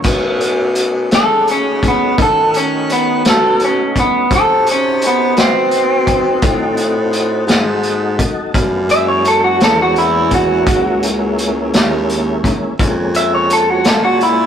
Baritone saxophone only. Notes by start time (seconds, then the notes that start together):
0.04 B2
1.12 C#3
2.18 D#3
3.25 B2
4.31 C3
5.36 B2
6.42 A2
7.47 G#2
8.55 F#2
9.61 E2
10.67 C#2
11.74 D#2
12.80 F2
13.86 A#2